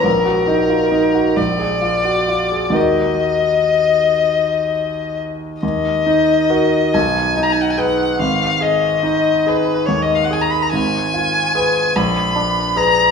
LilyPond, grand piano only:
\new Staff \with { instrumentName = "Grand piano" } { \time 6/8 \key ees \minor \tempo 4. = 47 bes,,16 ges'16 ees'16 f'16 ees'16 ges'16 bes,,16 aes'16 f'16 ges'16 f'16 aes'16 | <ees, ees' ges' bes'>2. | ees,8 ees'8 <ges' bes'>8 ces,8 ees'8 <aes' ces''>8 | aes,,8 aes'8 ees'8 aes'8 ees,8 aes'8 |
aes,,8 f'8 <aes' ces''>8 bes,,8 d'8 <aes' ces''>8 | }